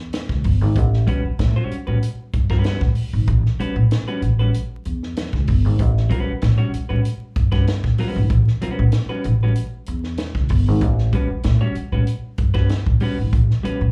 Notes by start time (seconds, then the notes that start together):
0.13 snare, closed hi-hat
0.29 C#2, kick, snare
0.44 G1, kick, open hi-hat
0.61 G#1
0.76 A1, kick, closed hi-hat
0.94 snare
1.07 G3 C#4 F#4 B4, kick, closed hi-hat
1.24 muted upright bass stroke
1.39 A2, snare, closed hi-hat
1.56 G3 C#4 F#4 C#5
1.71 muted upright bass stroke, closed hi-hat
1.87 A2 G3 C#4 F#4 B4
2.03 closed hi-hat
2.33 G2, kick, closed hi-hat
2.50 G3 C#4 F#4 B4, kick, snare
2.64 G3 C#4 F#4 B4, snare, closed hi-hat
2.81 A2, kick, snare
2.95 open hi-hat
3.13 G#1
3.27 A1, kick, closed hi-hat
3.46 snare
3.60 G3 C#4 F#4 B4, muted upright bass stroke, closed hi-hat
3.76 A2
3.91 snare, closed hi-hat
4.08 G3 C#4 F#4 B4
4.22 A1, closed hi-hat
4.39 G3 C#4 F#4 B4
4.54 closed hi-hat
4.85 E2, closed hi-hat
5.03 snare
5.17 snare, closed hi-hat
5.33 C#2, kick, snare
5.47 G1, kick, open hi-hat
5.65 G#1
5.79 A1, kick, closed hi-hat
5.97 snare
6.10 G3 C#4 F#4 B4, kick, closed hi-hat
6.28 muted upright bass stroke
6.42 A2, snare, closed hi-hat
6.58 G3 C#4 F#4 C#5
6.74 muted upright bass stroke, closed hi-hat
6.89 A2 G3 C#4 F#4 B4
7.05 closed hi-hat
7.36 G2, kick, closed hi-hat
7.52 G3 C#4 F#4 B4, kick, snare
7.67 snare, closed hi-hat
7.84 A2, kick, snare
7.98 G3 C#4 F#4 B4, open hi-hat
8.16 G#1
8.30 A1, kick, closed hi-hat
8.48 snare
8.62 G3 C#4 F#4 B4, muted upright bass stroke, closed hi-hat
8.79 A2
8.92 snare, closed hi-hat
9.09 G3 C#4 F#4 B4
9.24 A1, closed hi-hat
9.43 G3 C#4 F#4 B4
9.56 closed hi-hat
9.86 E2, closed hi-hat
10.04 snare
10.17 snare, closed hi-hat
10.35 C#2, kick, snare
10.49 G1, kick, open hi-hat
10.68 G#1
10.81 A1, kick, closed hi-hat
10.98 snare
11.13 G3 C#4 F#4 B4, kick, closed hi-hat
11.30 muted upright bass stroke
11.43 A2, snare, closed hi-hat
11.61 G3 C#4 F#4 C#5
11.75 muted upright bass stroke, closed hi-hat
11.92 A2 G3 C#4 F#4 B4
12.07 closed hi-hat
12.38 G2, kick, closed hi-hat
12.54 G3 C#4 F#4 B4, kick, snare
12.69 snare, closed hi-hat
12.86 A2, kick
13.00 G3 C#4 F#4 B4, open hi-hat
13.19 G#1
13.33 A1, kick, closed hi-hat
13.51 snare
13.63 G3 C#4 F#4 B4, muted upright bass stroke, closed hi-hat
13.81 A2